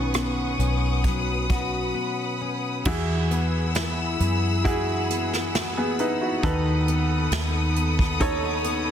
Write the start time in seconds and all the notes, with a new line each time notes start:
Already playing: B1 B2 D#3 B3 C#4 F#4 B4 F#5 C#6 D#6
0.14 B3, cross-stick, closed hi-hat
0.59 B1 C#4, closed hi-hat
1.04 F#3 B5, kick, closed hi-hat
1.50 F#4, kick, closed hi-hat
1.95 B3
2.41 C#4
2.84 E2 E3 E4 F#4 G#4 F#5 B5 E6, kick, crash
3.31 B3, closed hi-hat
3.75 E4, snare, closed hi-hat
4.20 F#2 B3, closed hi-hat
4.64 E4 F#4 G#4, kick, closed hi-hat
5.10 B3, closed hi-hat
5.33 snare
5.55 F#4, snare, closed hi-hat
5.77 B3 G#4
5.99 D#4 E4 B4, closed hi-hat
6.22 F#4
6.43 D#2 D#3 D#4 A4 B4 B5 D#6, kick, closed hi-hat
6.88 B3, closed hi-hat
7.31 D#2 D#4, snare, closed hi-hat
7.76 B3, closed hi-hat
7.99 kick
8.20 D#4 A4 C#5, kick, closed hi-hat
8.64 B3, closed hi-hat